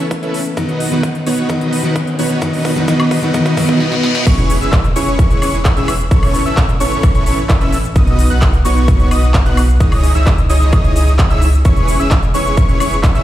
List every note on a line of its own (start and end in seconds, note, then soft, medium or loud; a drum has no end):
0.00 0.54 E3 medium
0.00 0.54 A3 medium
0.00 0.55 B3 medium
0.00 0.55 C#4 medium
0.00 riser medium
0.11 kick loud
0.11 closed hi-hat medium
0.23 0.39 C#4 medium
0.23 0.39 E4 medium
0.23 0.39 A4 medium
0.23 0.39 B4 medium
0.23 0.39 E5 medium
0.23 closed hi-hat soft
0.34 open hi-hat loud
0.46 closed hi-hat soft
0.57 0.89 D#3 medium
0.57 0.89 F#3 medium
0.57 0.89 B3 medium
0.57 0.89 D#4 medium
0.57 0.89 D#4 loud
0.57 0.89 F#4 medium
0.57 0.89 B4 medium
0.57 0.89 D#5 medium
0.57 kick loud
0.57 closed hi-hat medium
0.69 closed hi-hat soft
0.80 open hi-hat loud
0.91 1.47 D#3 medium
0.91 1.48 F#3 medium
0.91 1.08 B3 medium
0.91 1.48 B3 medium
0.91 1.08 D#4 medium
0.91 1.48 D#4 medium
0.91 1.08 F#4 medium
0.91 1.08 B4 medium
0.91 1.08 F#5 medium
0.91 closed hi-hat soft
1.03 kick loud
1.03 closed hi-hat medium
1.15 closed hi-hat soft
1.26 1.48 B3 medium
1.26 1.48 D#4 medium
1.26 1.48 F#4 medium
1.26 1.48 B4 medium
1.26 1.48 C#5 medium
1.26 open hi-hat loud
1.38 closed hi-hat soft
1.49 1.81 D#3 medium
1.49 1.81 F#3 medium
1.49 1.81 B3 medium
1.49 1.82 B3 medium
1.49 1.81 D#4 medium
1.49 1.82 D#4 loud
1.49 1.81 F#4 medium
1.49 1.81 B4 medium
1.49 1.81 D#5 medium
1.49 kick loud
1.49 closed hi-hat medium
1.61 closed hi-hat soft
1.73 open hi-hat loud
1.83 2.39 D#3 medium
1.83 2.40 F#3 medium
1.83 2.00 B3 medium
1.83 2.40 B3 medium
1.83 2.00 D#4 medium
1.83 2.41 D#4 medium
1.83 2.00 F#4 medium
1.83 2.00 B4 medium
1.83 2.00 F#5 medium
1.83 closed hi-hat soft
1.96 kick loud
1.96 closed hi-hat medium
2.07 closed hi-hat soft
2.19 2.40 B3 medium
2.19 2.40 D#4 medium
2.19 2.40 F#4 medium
2.19 2.40 B4 medium
2.19 2.40 C#5 medium
2.19 open hi-hat loud
2.30 closed hi-hat soft
2.41 2.73 D#3 medium
2.41 2.74 F#3 medium
2.41 2.74 B3 medium
2.41 2.74 D#4 medium
2.41 2.74 D#4 loud
2.41 2.74 F#4 medium
2.41 2.74 B4 medium
2.41 2.74 D#5 medium
2.41 kick loud
2.41 closed hi-hat medium
2.53 open hi-hat medium
2.65 kick loud
2.65 open hi-hat loud
2.75 2.86 D#3 medium
2.75 2.86 F#3 medium
2.75 2.86 B3 medium
2.75 2.86 D#4 medium
2.75 2.87 D#4 medium
2.75 2.86 F#4 medium
2.75 2.86 B4 medium
2.75 2.86 F#5 medium
2.87 3.20 D#3 medium
2.87 3.20 F#3 medium
2.87 3.20 B3 medium
2.87 3.20 D#4 medium
2.87 3.20 F#4 medium
2.87 3.20 B4 medium
2.87 3.20 D#5 medium
2.87 kick loud
2.87 closed hi-hat medium
3.00 closed hi-hat soft
3.00 high woodblock medium
3.11 kick loud
3.11 open hi-hat loud
3.21 3.32 D#3 medium
3.21 3.32 F#3 medium
3.21 3.32 B3 medium
3.21 3.33 B3 medium
3.21 3.32 D#4 medium
3.21 3.33 D#4 loud
3.21 3.32 F#4 medium
3.21 3.32 B4 medium
3.21 3.32 F#5 medium
3.21 closed hi-hat soft
3.33 3.55 D#3 medium
3.33 3.55 F#3 medium
3.33 3.56 B3 medium
3.33 3.56 D#4 medium
3.33 3.56 F#4 medium
3.33 3.56 B4 medium
3.33 3.56 D#5 medium
3.33 kick loud
3.33 closed hi-hat medium
3.33 reverse cymbal medium
3.46 kick loud
3.46 closed hi-hat soft
3.56 3.78 D#3 medium
3.56 3.78 F#3 medium
3.56 3.79 B3 medium
3.56 3.79 D#4 medium
3.56 3.79 F#4 medium
3.56 3.79 B4 medium
3.56 3.79 D#5 medium
3.56 kick loud
3.56 open hi-hat loud
3.69 kick medium
3.80 4.02 B3 medium
3.80 4.02 D#4 medium
3.80 4.02 F#4 medium
3.80 4.02 B4 medium
3.80 4.02 D#5 medium
3.80 snare medium
3.92 snare medium
4.03 4.25 B3 medium
4.03 4.25 D#4 medium
4.03 4.25 F#4 medium
4.03 4.25 B4 medium
4.03 4.25 D#5 medium
4.03 snare medium
4.15 snare medium
4.27 4.59 E1 medium
4.27 4.58 C#4 medium
4.27 4.58 E4 medium
4.27 4.58 G#4 medium
4.27 4.58 B4 medium
4.27 4.58 C#5 medium
4.27 4.58 C#6 medium
4.27 kick loud
4.27 closed hi-hat loud
4.27 crash loud
4.27 impact medium
4.27 shaker soft
4.38 closed hi-hat soft
4.38 shaker soft
4.50 open hi-hat loud
4.50 shaker medium
4.61 4.93 E1 loud
4.61 4.77 C#4 medium
4.61 4.77 E4 medium
4.61 4.77 G#4 medium
4.61 4.77 B4 medium
4.61 4.77 E5 medium
4.61 4.77 E6 medium
4.61 closed hi-hat soft
4.61 shaker soft
4.73 kick loud
4.73 clap loud
4.73 closed hi-hat medium
4.73 shaker soft
4.84 closed hi-hat soft
4.84 shaker soft
4.96 5.40 E1 loud
4.96 5.39 C#4 medium
4.96 5.39 E4 medium
4.96 5.39 G#4 medium
4.96 5.39 B4 medium
4.96 5.39 C#5 loud
4.96 5.39 C#6 medium
4.96 open hi-hat loud
4.96 shaker medium
5.07 closed hi-hat soft
5.07 shaker soft
5.19 kick loud
5.19 closed hi-hat loud
5.19 shaker soft
5.30 closed hi-hat soft
5.30 shaker soft
5.42 5.74 E1 loud
5.42 5.58 C#4 medium
5.42 5.58 E4 medium
5.42 5.58 G#4 medium
5.42 5.58 B4 medium
5.42 5.58 C#5 medium
5.42 5.58 C#6 medium
5.42 open hi-hat loud
5.42 high woodblock medium
5.42 shaker medium
5.54 closed hi-hat soft
5.54 shaker soft
5.65 kick loud
5.65 clap loud
5.65 closed hi-hat loud
5.65 shaker soft
5.77 6.09 E1 loud
5.77 5.93 C#4 medium
5.77 5.93 E4 medium
5.77 5.93 G#4 medium
5.77 5.93 B4 medium
5.77 5.93 E5 medium
5.77 5.93 E6 medium
5.77 closed hi-hat soft
5.77 shaker soft
5.88 open hi-hat loud
5.88 high woodblock medium
5.88 shaker medium
6.00 closed hi-hat soft
6.00 shaker soft
6.11 6.43 A1 loud
6.11 6.43 C#4 medium
6.11 6.43 E4 medium
6.11 6.43 A4 medium
6.11 6.43 B4 medium
6.11 6.43 C#5 medium
6.11 6.43 C#6 medium
6.11 kick loud
6.11 closed hi-hat loud
6.11 shaker soft
6.23 open hi-hat medium
6.23 high woodblock medium
6.23 shaker soft
6.34 open hi-hat loud
6.34 shaker medium
6.46 6.78 A1 loud
6.46 6.62 C#4 medium
6.46 6.62 E4 medium
6.46 6.62 A4 medium
6.46 6.62 B4 medium
6.46 6.62 E5 medium
6.46 6.62 E6 medium
6.46 closed hi-hat soft
6.46 shaker soft
6.57 kick loud
6.57 clap loud
6.57 closed hi-hat medium
6.57 shaker soft
6.69 closed hi-hat soft
6.69 shaker soft
6.80 7.24 A1 medium
6.80 7.24 C#4 medium
6.80 7.24 E4 medium
6.80 7.24 A4 medium
6.80 7.24 B4 medium
6.80 7.24 C#5 medium
6.80 7.24 C#6 medium
6.80 open hi-hat loud
6.80 shaker medium
6.92 closed hi-hat soft
6.92 shaker soft
7.03 kick loud
7.03 closed hi-hat medium
7.03 high woodblock medium
7.03 shaker soft
7.15 closed hi-hat soft
7.15 shaker soft
7.26 7.59 A1 loud
7.26 7.43 C#4 medium
7.26 7.43 E4 medium
7.26 7.43 A4 medium
7.26 7.43 B4 medium
7.26 7.43 C#5 medium
7.26 7.43 C#6 medium
7.26 open hi-hat loud
7.26 shaker medium
7.38 closed hi-hat soft
7.38 shaker soft
7.49 kick loud
7.49 clap loud
7.49 closed hi-hat medium
7.49 shaker soft
7.61 7.93 A1 loud
7.61 7.77 C#4 medium
7.61 7.77 E4 medium
7.61 7.77 A4 medium
7.61 7.77 B4 medium
7.61 7.77 E5 medium
7.61 7.77 E6 medium
7.61 closed hi-hat soft
7.61 shaker soft
7.73 open hi-hat loud
7.73 shaker medium
7.84 closed hi-hat soft
7.84 shaker soft
7.96 8.28 B1 loud
7.96 8.28 B3 medium
7.96 8.28 D#4 medium
7.96 8.28 F#4 medium
7.96 8.28 B4 medium
7.96 8.28 D#5 medium
7.96 8.28 D#6 medium
7.96 kick loud
7.96 closed hi-hat medium
7.96 shaker soft
8.07 closed hi-hat soft
8.07 shaker soft
8.19 open hi-hat loud
8.19 shaker medium
8.30 8.63 B1 loud
8.30 8.46 B3 medium
8.30 8.46 D#4 medium
8.30 8.46 F#4 medium
8.30 8.46 B4 medium
8.30 8.46 F#5 medium
8.30 8.46 F#6 medium
8.30 closed hi-hat soft
8.30 shaker soft
8.42 kick loud
8.42 clap loud
8.42 closed hi-hat medium
8.42 shaker soft
8.53 closed hi-hat soft
8.53 shaker soft
8.65 9.09 B1 loud
8.65 9.08 B3 medium
8.65 9.08 D#4 medium
8.65 9.08 F#4 medium
8.65 9.08 B4 medium
8.65 9.08 C#5 loud
8.65 9.08 C#6 medium
8.65 open hi-hat loud
8.65 shaker medium
8.77 closed hi-hat soft
8.77 shaker soft
8.88 kick loud
8.88 closed hi-hat medium
8.88 shaker soft
9.00 closed hi-hat soft
9.00 shaker soft
9.11 9.43 B1 loud
9.11 9.27 B3 medium
9.11 9.27 D#4 medium
9.11 9.27 F#4 medium
9.11 9.27 B4 medium
9.11 9.27 D#5 medium
9.11 9.27 D#6 medium
9.11 open hi-hat loud
9.11 high woodblock medium
9.11 shaker medium
9.23 closed hi-hat soft
9.23 shaker soft
9.34 kick loud
9.34 clap loud
9.34 closed hi-hat medium
9.34 shaker soft
9.46 9.78 B1 loud
9.46 9.62 B3 medium
9.46 9.62 D#4 medium
9.46 9.62 F#4 medium
9.46 9.62 B4 medium
9.46 9.62 F#5 medium
9.46 9.62 F#6 medium
9.46 closed hi-hat soft
9.46 shaker soft
9.57 open hi-hat loud
9.57 high woodblock medium
9.57 shaker medium
9.69 closed hi-hat soft
9.69 shaker soft
9.80 10.13 C#2 medium
9.80 10.12 D#4 medium
9.80 10.12 E4 medium
9.80 10.12 G#4 medium
9.80 10.12 C#5 medium
9.80 10.12 D#5 medium
9.80 10.12 D#6 medium
9.80 kick loud
9.80 closed hi-hat medium
9.80 shaker soft
9.92 open hi-hat medium
9.92 high woodblock medium
9.92 shaker soft
10.04 open hi-hat loud
10.04 shaker medium
10.15 10.47 C#2 loud
10.15 10.31 D#4 medium
10.15 10.31 E4 medium
10.15 10.31 G#4 medium
10.15 10.31 C#5 medium
10.15 10.31 E5 medium
10.15 10.31 E6 medium
10.15 closed hi-hat soft
10.15 shaker soft
10.27 kick loud
10.27 clap loud
10.27 closed hi-hat medium
10.27 shaker soft
10.38 closed hi-hat soft
10.38 shaker soft
10.50 10.93 C#2 loud
10.50 10.93 D#4 medium
10.50 10.93 E4 medium
10.50 10.93 G#4 medium
10.50 10.93 C#5 medium
10.50 10.93 D#5 loud
10.50 10.93 D#6 medium
10.50 open hi-hat loud
10.50 shaker medium
10.61 closed hi-hat soft
10.61 shaker soft
10.73 kick loud
10.73 closed hi-hat medium
10.73 high woodblock medium
10.73 shaker soft
10.84 closed hi-hat soft
10.84 shaker soft
10.96 11.28 C#2 loud
10.96 11.12 D#4 medium
10.96 11.12 E4 medium
10.96 11.12 G#4 medium
10.96 11.12 C#5 medium
10.96 11.12 D#5 medium
10.96 11.12 D#6 medium
10.96 open hi-hat loud
10.96 shaker medium
11.07 closed hi-hat soft
11.07 shaker soft
11.19 kick loud
11.19 clap loud
11.19 closed hi-hat medium
11.19 shaker soft
11.30 11.63 C#2 loud
11.30 11.47 D#4 medium
11.30 11.47 E4 medium
11.30 11.47 G#4 medium
11.30 11.47 C#5 medium
11.30 11.47 E5 loud
11.30 11.46 E6 loud
11.30 closed hi-hat soft
11.30 shaker soft
11.42 open hi-hat loud
11.42 shaker medium
11.53 closed hi-hat soft
11.53 shaker soft
11.65 11.97 E1 medium
11.65 11.97 C#4 medium
11.65 11.97 E4 medium
11.65 11.97 G#4 medium
11.65 11.97 B4 medium
11.65 11.97 C#5 medium
11.65 11.97 C#6 medium
11.65 kick loud
11.65 closed hi-hat medium
11.65 shaker soft
11.76 closed hi-hat soft
11.76 shaker soft
11.88 open hi-hat loud
11.88 shaker medium
11.99 12.32 E1 loud
11.99 12.16 C#4 medium
11.99 12.16 E4 medium
11.99 12.16 G#4 medium
11.99 12.16 B4 medium
11.99 12.16 E5 medium
11.99 12.16 E6 medium
11.99 closed hi-hat soft
11.99 shaker soft
12.11 kick loud
12.11 clap loud
12.11 closed hi-hat medium
12.11 shaker soft
12.23 closed hi-hat soft
12.23 shaker soft
12.34 12.78 E1 medium
12.34 12.78 C#4 medium
12.34 12.78 E4 medium
12.34 12.78 G#4 medium
12.34 12.78 B4 medium
12.34 12.78 C#5 medium
12.34 12.78 C#6 medium
12.34 open hi-hat loud
12.34 shaker medium
12.46 closed hi-hat soft
12.46 shaker soft
12.57 kick loud
12.57 closed hi-hat medium
12.57 shaker soft
12.69 closed hi-hat soft
12.69 shaker soft
12.80 13.13 E1 loud
12.80 12.97 C#4 medium
12.80 12.97 E4 medium
12.80 12.97 G#4 medium
12.80 12.96 B4 medium
12.80 12.96 C#5 medium
12.80 12.96 C#6 medium
12.80 open hi-hat loud
12.80 high woodblock medium
12.80 shaker medium
12.92 closed hi-hat soft
12.92 shaker soft
13.03 kick loud
13.03 clap loud
13.03 closed hi-hat medium
13.03 shaker soft
13.15 13.23 E1 loud
13.15 13.23 C#4 medium
13.15 13.23 E4 medium
13.15 13.23 G#4 medium
13.15 13.23 B4 medium
13.15 13.23 E5 medium
13.15 13.23 E6 medium
13.15 closed hi-hat soft
13.15 shaker soft